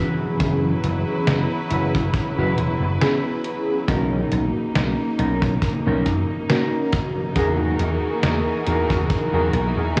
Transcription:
Already playing: E3 F#3 B3 C#4 E4 F#4 G#4 B4
0.39 F#1 B3 C#4 E4 G#4, kick, closed hi-hat
0.84 F#1, closed hi-hat
1.27 F#1, snare, closed hi-hat
1.51 muted clean electric guitar stroke
1.71 F#1 E4 F#4 B4, closed hi-hat
1.95 F#1, kick
2.14 muted slap bass stroke, kick, closed hi-hat
2.38 F#1 E4 F#4 B4
2.58 E1, closed hi-hat
2.82 F#1, muted clean electric guitar stroke
3.01 B3 C#4 E4 F#4 G#4 B4, snare, closed hi-hat
3.44 closed hi-hat
3.87 B1 A#3 C#4 D#4 F#4 A#4, kick, closed hi-hat
4.32 B1, closed hi-hat
4.56 muted slap bass stroke
4.75 B1, snare, closed hi-hat
4.99 muted clean electric guitar stroke
5.18 B1 C#4 D#4 A#4, closed hi-hat
5.42 B1, kick
5.62 kick, closed hi-hat
5.86 B1 C#4 D#4 A#4
6.06 F#2, kick, closed hi-hat
6.30 muted clean electric guitar stroke
6.49 A#3 C#4 D#4 F#4 A#4, snare, closed hi-hat
6.92 kick, closed hi-hat
7.35 E2 E3 A#3 D#4 F#4 G#4 A#4, kick, closed hi-hat
7.79 E2, closed hi-hat
8.23 E2, snare, closed hi-hat
8.46 muted clean electric guitar stroke
8.66 E2 D#4 F#4 G#4 A#4, closed hi-hat
8.90 E2, kick
9.10 muted slap bass stroke, kick, closed hi-hat
9.33 E2 D#4 F#4 G#4 A#4
9.53 B1, closed hi-hat
9.76 E2, muted clean electric guitar stroke
9.96 A#3 D#4 F#4, snare, closed hi-hat

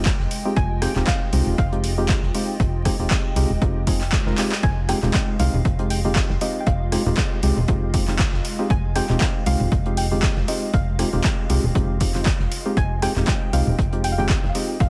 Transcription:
Already playing: F1 G#3 F4 D#5 G5
0.05 kick, snare, clap, closed hi-hat
0.20 F1, snare
0.31 closed hi-hat, open hi-hat
0.45 G#3 C4 D#4 F4 G4
0.56 F1 G#5, kick, closed hi-hat
0.82 G#3 C4 D#4 F4 G4 G5, cross-stick, snare, closed hi-hat, open hi-hat
0.96 D#1 G#3 C4 D#4 F4 G4, clap
1.07 F5, kick, snare, clap, closed hi-hat
1.33 C2 G#3 C4 D#4 F4 G4, closed hi-hat, open hi-hat
1.47 D#1
1.58 F1 F5, kick, closed hi-hat
1.72 G#3 C4 D#4 F4 G4, closed hi-hat
1.84 closed hi-hat, open hi-hat
1.98 G#3 C4 D#4 F4 G4
2.09 kick, snare, clap, closed hi-hat
2.23 F1, snare
2.34 G#3 C4 D#4 F4 G4, closed hi-hat, open hi-hat
2.60 F1, kick, closed hi-hat
2.85 G#3 C4 D#4 F4 G4, kick, cross-stick, closed hi-hat, open hi-hat
2.99 D#1 G#3 C4 D#4 F4 G4
3.10 kick, snare, clap, closed hi-hat
3.36 C2 G#3 C4 D#4 F4 G4, closed hi-hat, open hi-hat
3.50 D#1
3.62 F1 G#3 C4 D#4 F4 G4, kick, closed hi-hat
3.87 G#3 C4 D#4 F4 G#4, kick, closed hi-hat, open hi-hat
4.01 clap
4.12 kick, snare, clap, closed hi-hat
4.26 F1 G#3 C4 D#4 F4 A#4, snare
4.38 G#3 C4 D#4 F4 G4, clap, closed hi-hat, open hi-hat
4.52 clap
4.63 F1 F5 G#5, kick, closed hi-hat
4.88 G#3 C4 D#4 F4 G4 G5, cross-stick, snare, closed hi-hat, open hi-hat
5.02 D#1 G#3 C4 D#4 F4 G4, clap, low conga
5.14 kick, snare, clap, closed hi-hat
5.39 C2 G#3 C4 D#4 F4 G4 F5, closed hi-hat, open hi-hat, high bongo
5.54 D#1, high conga, low conga
5.65 F1, kick, closed hi-hat
5.79 G#3 C4 D#4 F4 G4, closed hi-hat
5.90 G5, closed hi-hat, open hi-hat
6.05 G#3 C4 D#4 F4 G4, high conga
6.15 kick, snare, clap, closed hi-hat
6.30 F1, snare, high bongo
6.41 G#3 C4 D#4 F4 G4 D#5, closed hi-hat, open hi-hat
6.60 G5
6.67 F1 F5, kick, closed hi-hat
6.92 G#3 C4 D#4 F4 G4, cross-stick, closed hi-hat, open hi-hat
7.06 D#1 G#3 C4 D#4 F4 G4, high bongo, low conga
7.17 kick, snare, clap, closed hi-hat
7.42 C2 G#3 C4 D#4 F4 G4, closed hi-hat, open hi-hat, high bongo
7.57 D#1, high conga, low conga
7.68 F1 G#3 C4 D#4 F4 G4, kick, closed hi-hat
7.94 G#3 C4 D#4 F4 G4, kick, closed hi-hat, open hi-hat
8.08 G#3 C4 D#4 F4 G4, clap, high bongo, high conga
8.19 kick, snare, clap, closed hi-hat
8.33 F1, snare
8.45 closed hi-hat, open hi-hat
8.59 G#3 C4 D#4 F4 G4
8.70 F1 G#5, kick, closed hi-hat
8.95 G#3 C4 D#4 F4 G4 G5, cross-stick, snare, closed hi-hat, open hi-hat
9.09 D#1 G#3 C4 D#4 F4 G4, clap, low conga
9.21 kick, snare, clap, closed hi-hat
9.46 C2 G#3 C4 D#4 F4 G4 F5, closed hi-hat, open hi-hat, high bongo
9.60 D#1, high conga, low conga
9.72 F1, kick, closed hi-hat
9.86 G#3 C4 D#4 F4 G4, closed hi-hat
9.97 G5, closed hi-hat, open hi-hat
10.11 G#3 C4 D#4 F4 G4, high conga
10.22 kick, snare, clap, closed hi-hat
10.37 F1, snare, high bongo
10.48 G#3 C4 D#4 F4 G4 D#5, closed hi-hat, open hi-hat
10.74 F1 F5, kick, closed hi-hat
10.99 G#3 C4 D#4 F4 G4, cross-stick, closed hi-hat, open hi-hat
11.13 D#1 G#3 C4 D#4 F4 G4, high bongo, low conga
11.24 kick, snare, clap, closed hi-hat
11.50 C2 G#3 C4 D#4 F4 G4, closed hi-hat, open hi-hat, high bongo
11.64 D#1, high conga, low conga
11.75 F1 G#3 C4 D#4 F4 G4, kick, closed hi-hat, high conga
12.00 G#3 C4 D#4 F4 G4, kick, closed hi-hat, open hi-hat
12.15 G#3 C4 D#4 F4 G4, clap, high bongo, high conga
12.26 kick, snare, clap, closed hi-hat
12.40 F1, snare
12.52 closed hi-hat, open hi-hat
12.65 G#3 C4 D#4 F4 G4
12.77 F1 G5 G#5, kick, closed hi-hat
13.02 G#3 C4 D#4 F4 G4 G5, cross-stick, snare, closed hi-hat, open hi-hat
13.16 D#1 G#3 C4 D#4 F4 G4, clap, low conga
13.27 kick, snare, clap, closed hi-hat
13.53 C2 G#3 C4 D#4 F4 G4 F5, closed hi-hat, open hi-hat, high bongo
13.67 D#1, high conga, low conga
13.79 F1, kick, closed hi-hat
13.93 G#3 C4 D#4 F4 G4, closed hi-hat
14.04 G5, closed hi-hat, open hi-hat
14.12 F5
14.18 G#3 C4 D#4 F4 G4 G5, high conga
14.29 kick, snare, clap, closed hi-hat
14.43 F1, snare, high bongo
14.49 F5
14.55 G#3 C4 D#4 F4 G4 D#5, closed hi-hat, open hi-hat
14.80 F1 F5, kick, closed hi-hat

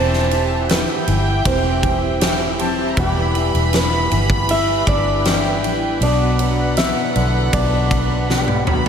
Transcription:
Already playing: E1 E3 G3 C4 E4 G4 C5 E5 G5 A5
0.14 snare
0.31 E3, ride
0.63 F#5
0.69 E3 B3 B4 G5, snare, ride
1.07 G1 E3, ride
1.45 E1 E3 G3 C4 E4 C5, kick, ride
1.83 E3, kick, ride
2.20 E3 G3 C4 E4 G5, snare, ride
2.59 C4 A5, ride
2.91 A#5
2.96 E1 E2 B2 E3 G3 G4 B4 B5, kick, ride
3.01 B3 E4
3.35 E3, ride
3.54 E1, ride
3.73 E3 B3 B4, snare, ride
4.11 G1 E3, ride
4.30 kick
4.48 E3 G3 B3 E4 E5, ride
4.87 G1 E3 D4 D5, kick, ride
5.25 E3 G3 B3 E4 G5, snare, ride
5.63 A1 E3, ride
6.00 B1 B2 F#3 B3 D4 D5 F#5 B5, ride
6.05 F#4
6.39 F#3, ride
6.77 B2 E4 E5, snare, ride
7.15 B1 D3, ride
7.53 B1 B2 F#3 B3 D4 F#4 D5, kick, ride
7.91 kick, ride
8.29 B2 B3 D4 G4 F#5, snare
8.48 high tom
8.67 F#3 B5, mid tom
8.72 F#4

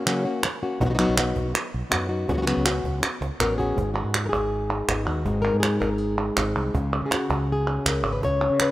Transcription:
0.06 C#3 F#3 A#3 C#4 F#4, clap
0.25 A#3 C#4 F#4
0.43 muted nylon-string guitar stroke, cajon slap, clap
0.62 A#3 C#4 F#4, cajon slap
0.80 B1 B2 F#3 B3 D#4 F#4, cajon bass
0.85 F#3 B3 D#4 F#4
0.90 F#3 B3 D#4 F#4
0.94 F#3 B3 D#4 F#4
0.99 B2 F#3 B3 D#4 F#4, clap
1.09 B1
1.17 B3 D#4 F#4, cajon slap, clap
1.36 B1, cajon bass
1.54 muted nylon-string guitar stroke, clap
1.74 B1
1.90 F#2 F#3 B3 D#4 F#4, cajon bass, cajon slap, clap
2.09 B3 D#4 F#4
2.28 C#2 C#3 F#3 B3 C#4 F#4, cajon bass
2.33 F#3 B3 C#4 F#4
2.37 F#3 B3 C#4 F#4
2.42 F#3 B3 C#4 F#4
2.46 C#3 F#3 B3 C#4 F#4, clap
2.57 C#2
2.66 B3 C#4 F#4, cajon slap, clap
2.84 C#2, cajon bass
3.03 muted nylon-string guitar stroke, cajon slap, clap
3.21 C#2, cajon slap
3.40 A1 F#3 B3 C#4 F#4 A#4, cajon bass, clap
3.58 B3 C#4 F#4 G#4, cajon bass
3.76 G#1 G#2, cajon bass
3.94 F#4, clap
4.04 G#2
4.14 cajon slap, clap
4.26 G#4 A#4
4.33 G#1, cajon bass
4.52 cajon slap
4.70 D#4
4.88 G#1 B3 D#4, cajon bass, cajon slap, clap
5.05 D#2 F#4, clap
5.25 G#1 G#2 G#3 C4 D#4, cajon bass
5.42 A#4
5.54 G#2
5.60 G#4, cajon slap, clap
5.80 G#1 A#4, cajon bass, cajon slap, clap
5.93 A#4
5.98 G#4, cajon slap
6.18 D#4, clap
6.37 G#1 C4 D#4, cajon bass, cajon slap, clap
6.55 C2, clap
6.74 C#2 C#3, cajon bass
7.02 C#3
7.06 G#4
7.11 F#4, cajon slap, clap
7.30 C#2, cajon bass, cajon slap, clap
7.48 cajon slap
7.52 G#4
7.67 C#4, clap
7.86 C#2 A#4, cajon bass, cajon slap, clap
8.03 G#1 C#4, clap
8.13 B4
8.21 C#2 C#3 C#5, cajon bass
8.41 cajon slap, clap
8.50 C#3
8.60 B4, cajon slap, clap

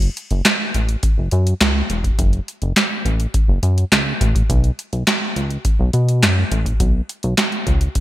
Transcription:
0.02 closed hi-hat
0.17 closed hi-hat
0.31 F#1, closed hi-hat
0.45 snare, clap, closed hi-hat
0.74 A1, closed hi-hat
0.89 closed hi-hat
1.03 kick, closed hi-hat
1.18 F#1
1.31 F#2, closed hi-hat
1.47 closed hi-hat
1.61 C#2, snare, clap, closed hi-hat
1.90 E1, closed hi-hat
2.04 kick, closed hi-hat
2.19 F#1, kick, closed hi-hat
2.33 closed hi-hat
2.48 closed hi-hat
2.62 F#1, closed hi-hat
2.76 snare, clap, closed hi-hat
3.05 A1, closed hi-hat
3.20 closed hi-hat
3.34 kick, closed hi-hat
3.48 F#1
3.63 F#2, closed hi-hat
3.78 closed hi-hat
3.92 C#2, snare, clap, closed hi-hat
4.21 A1, kick, closed hi-hat
4.35 kick, closed hi-hat
4.50 B1, kick, closed hi-hat
4.64 closed hi-hat
4.79 closed hi-hat
4.93 B1, closed hi-hat
5.07 snare, clap, closed hi-hat
5.36 C#2, closed hi-hat
5.50 closed hi-hat
5.65 kick, closed hi-hat
5.79 B1
5.93 B2, closed hi-hat
6.09 closed hi-hat
6.22 F#2, snare, clap, closed hi-hat
6.52 A1, closed hi-hat
6.66 kick, closed hi-hat
6.80 B1, kick, closed hi-hat
7.09 closed hi-hat
7.23 B1, closed hi-hat
7.38 snare, clap, closed hi-hat
7.52 closed hi-hat
7.67 C#2, kick, closed hi-hat
7.81 closed hi-hat
7.95 kick, closed hi-hat

